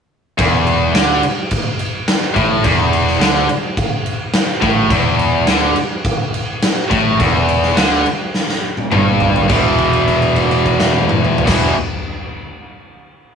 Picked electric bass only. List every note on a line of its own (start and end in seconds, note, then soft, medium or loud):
0.39 0.91 E1 medium
0.95 1.21 D2 medium
2.36 2.62 A1 medium
2.64 3.16 E1 medium
3.19 3.46 D2 medium
4.62 4.88 A1 loud
4.91 5.44 E1 medium
5.46 5.73 D2 loud
6.91 7.17 A1 medium
7.19 7.73 E1 loud
7.77 8.04 D2 loud
8.92 9.46 G1 loud
9.49 11.36 E1 medium
11.47 11.71 E1 loud